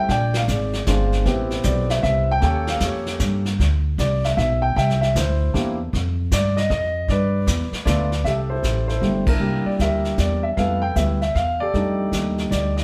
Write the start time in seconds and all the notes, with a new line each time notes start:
0.09 A#1 D5 G5, brush sweep, kick, snare
0.34 F5, snare
0.48 G#1 G#4 D5, kick, snare, hi-hat pedal
0.73 snare
0.87 G1 G#3 C4 D4 F4, kick, snare, hi-hat pedal
1.12 snare
1.25 A1 B3 C4 E4 G4, brush sweep, kick, snare
1.50 snare
1.63 B1 D5, kick, snare, hi-hat pedal
1.90 E5, snare
2.03 C2 E5, kick, snare
2.31 G5
2.40 D#2 A#3 C#4 G4 A4 G5, brush sweep, kick, snare
2.45 C#5
2.67 F5, snare
2.80 F2, kick, snare, hi-hat pedal
2.84 G4 C#5
3.06 snare
3.20 G2, kick, snare, hi-hat pedal
3.45 snare
3.59 D2, brush sweep, kick, snare
3.98 C2 D5, kick, snare, hi-hat pedal
4.24 E5, snare
4.37 B1 E5, kick, snare
4.62 G5
4.76 C2 E5 G5, brush sweep, kick, snare
4.90 snare
5.01 E5, snare
5.15 D2 E4 C5, kick, snare, hi-hat pedal
5.54 E2 A#3 D4 E4 G4, kick, snare
5.93 F2, brush sweep, kick, snare
6.31 G2 D5, kick, snare, hi-hat pedal
6.57 D#5, snare
6.70 F2 D#5, kick, snare
7.08 G2 B4 D5, brush sweep, kick, snare
7.47 E2, kick, snare, hi-hat pedal
7.72 muted upright bass stroke, snare
7.85 D2 A3 B3 D4 F4 B4 D5, kick, snare, hi-hat pedal
8.12 snare
8.24 C2 G4 A4 E5, brush sweep, kick, snare
8.50 E4 A4 C5
8.63 A1, kick, snare, hi-hat pedal
8.88 E4 A4 C5, snare
9.02 G1 G3 A3 D4 E4, kick, snare
9.27 D4 E4 A#4, kick, ride
9.40 C2 G3 A#3 D4 E4, brush sweep
9.66 D5, muted upright bass stroke
9.79 D2 G4 A#4 E5, kick, snare, hi-hat pedal
10.05 snare
10.18 E2 D5, kick, snare, hi-hat pedal
10.43 E5
10.56 F2 G3 A3 B3 E4 A4 B4 F5, brush sweep, kick, snare
10.82 G5
10.96 D2 G3 A3 B3 E4 E5, kick, snare, hi-hat pedal
11.22 E5, snare
11.35 E2 F5, kick, snare
11.60 G4 A4 D5
11.73 F2 G3 A3 D4 D#4, brush sweep, kick, snare
12.12 D#2, kick, snare, hi-hat pedal
12.38 snare
12.51 D2 D5, kick, snare, hi-hat pedal
12.77 D#5, snare